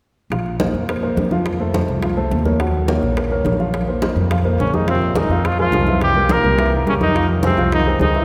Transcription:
0.30 A#1 F3 F4 F5, high bongo, high conga
0.46 high conga
0.60 A#3 A#4 C5, high bongo, high conga
0.73 F2, high bongo, high conga
0.88 A#3 A#4 C5, high bongo, high conga
1.02 A#3 A#4 C5, high conga
1.17 F2, high bongo, low bongo, high conga
1.31 F3 F4 F5, high bongo, high conga
1.46 high bongo, high conga
1.60 A3 A4 C5, high conga
1.74 A3 A4 C5, high bongo, high conga
1.88 C2, high bongo, high conga
2.03 F3 F4 F5, high bongo, high conga
2.17 A3 A4 C5, high conga
2.31 D#2, high bongo, low bongo, high conga
2.45 A#3 A#4 C#5, high bongo, high conga
2.59 F#3 F#4 F#5, high bongo, high conga
2.74 high conga
2.88 A#3 A#4 C#5, high bongo, high conga
3.02 A#1, high bongo, high conga
3.17 A#3 A#4 C#5, high bongo, high conga
3.31 A#3 A#4 C#5, high conga
3.45 A#1, high bongo, low bongo, high conga
3.59 F3 F4 F5, high bongo
3.73 high bongo, high conga
3.87 A#3 A#4 C5, high conga
4.02 A#3 A#4 C5, high bongo, high conga
4.16 F2, high bongo, high conga
4.31 F3 F4 F5, high bongo, high conga
4.44 A#3 A#4 C5, high conga
4.58 A#1 C#3 C#4, high bongo, low bongo, high conga
4.73 D#3 G#3 D#4 G#4 A#4, high bongo, high conga
4.88 C3 F3 C4 F4 F5, high bongo, high conga
5.02 high conga
5.15 D#3 G#3 D#4 G#4 A#4, high bongo, high conga
5.29 F2 F3 F4 F5, high bongo, high conga
5.44 F3 F4, high bongo, high conga
5.58 F3 G#3 F4 G#4 A#4, high conga
5.72 C2 G#3 G#4 A#4, high bongo, low bongo, high conga
5.87 E3 E4 E5, high bongo, high conga
6.01 G3 G4, high bongo, high conga
6.15 G3 G4 A#4, high conga
6.29 A#3 A#4, high bongo, high conga
6.44 C2 G3 G4 A#4, high bongo, high conga
6.58 E3 E4 E5, high bongo, high conga
6.72 high conga
6.86 F2 C#3 G3 C#4 G4 A#4, high bongo, low bongo, high conga
7.01 D#3 D#4, high bongo, high conga
7.15 F3 F4 F5, high bongo, high conga
7.29 high conga
7.43 C3 G#3 C4 G#4 C5, high bongo, high conga
7.57 C2 F3 F4 F5, high bongo, high conga
7.71 D#3 D#4, high bongo, high conga
7.86 G#3 G#4 C5, high conga
7.99 C#2 D#3 G#3 D#4 G#4 C5, high bongo, low bongo, high conga
8.15 E3 E4 E5, high bongo

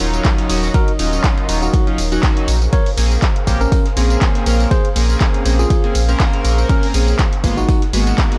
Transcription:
Already playing: F#3 D#4 A#4 C#5 D#5
0.00 D#1 F#3 C#4 D#4 F4, open hi-hat, ride, tambourine
0.14 snare, closed hi-hat, tambourine
0.25 kick, snare, clap, closed hi-hat, ride
0.38 snare, closed hi-hat
0.49 D#1 F#3 C#4 D#4 F#4, open hi-hat, ride, tambourine
0.63 snare, tambourine
0.74 F#4 A#4, kick, closed hi-hat, ride
0.88 closed hi-hat
0.99 D#1 F#3 C#4 D#4 F4, open hi-hat, ride, tambourine
1.13 tambourine
1.24 kick, snare, clap, closed hi-hat, ride, tambourine
1.38 closed hi-hat
1.49 D#1 F#3 C#4 D#4 F4, open hi-hat, ride, tambourine
1.62 D#4 F#4, tambourine
1.74 kick, closed hi-hat, ride
1.87 F#3 C#4 D#4 F4, closed hi-hat
1.98 D#1, open hi-hat, ride, tambourine
2.12 F#3 C#4 D#4 F#4, closed hi-hat, tambourine
2.23 kick, snare, clap, closed hi-hat, ride, tambourine
2.37 closed hi-hat
2.48 A#1 G#4 C5 F5, open hi-hat, ride, tambourine
2.62 tambourine
2.73 A#4 C#5, kick, closed hi-hat, ride, tambourine
2.86 open hi-hat, ride
2.97 A#1 A#3 C4 C#4 G#4, open hi-hat, ride, tambourine
3.11 tambourine
3.22 kick, snare, clap, closed hi-hat, ride
3.36 closed hi-hat
3.47 A#1 A#3 C4 C#4 G4, kick, snare, open hi-hat, ride, tambourine
3.61 C#4 A#4, tambourine
3.72 kick, closed hi-hat, open hi-hat, tambourine
3.86 snare, closed hi-hat
3.97 A#1 A#3 C4 C#4 G#4, open hi-hat, ride, tambourine
4.10 snare, closed hi-hat, tambourine
4.21 kick, snare, clap, closed hi-hat, ride
4.35 snare, closed hi-hat
4.46 A#1 A#3 C4 C#4 A#4, open hi-hat, ride, tambourine
4.60 snare, tambourine
4.71 G#4 C5, kick, closed hi-hat, ride, tambourine
4.85 closed hi-hat
4.96 A#1 A#3 C4 C#4 G#4, open hi-hat, ride, tambourine
5.10 tambourine
5.21 kick, snare, clap, closed hi-hat, ride, tambourine
5.34 closed hi-hat
5.45 A#1 A#3 C4 C#4 G#4, open hi-hat, ride, tambourine
5.59 F4 G#4, tambourine
5.70 kick, closed hi-hat, ride, tambourine
5.84 A#3 C4 C#4 G#4, closed hi-hat
5.95 A#1, open hi-hat, ride, tambourine
6.08 A#3 C4 C#4 A#4, closed hi-hat, tambourine
6.20 kick, snare, clap, closed hi-hat, ride, tambourine
6.33 closed hi-hat
6.45 A#1, open hi-hat, ride, tambourine
6.58 tambourine
6.69 C#4 A#4, kick, closed hi-hat, ride, tambourine
6.83 open hi-hat, ride
6.94 A#1 A#3 C4 C#4 G#4, open hi-hat, ride, tambourine
7.08 tambourine
7.19 kick, snare, clap, closed hi-hat, ride, tambourine
7.33 closed hi-hat
7.44 G#1 G#3 A#3 B3 D#4 F4 G#4 A#4 F#5, kick, snare, open hi-hat, ride, tambourine
7.57 D#4 F#4, tambourine
7.69 kick, closed hi-hat, open hi-hat, tambourine
7.82 snare, closed hi-hat
7.93 G#1 G#3 A#3 B3 F#4, open hi-hat, ride, tambourine
8.07 snare, closed hi-hat, tambourine
8.18 kick, snare, clap, closed hi-hat, ride, tambourine
8.32 snare, closed hi-hat

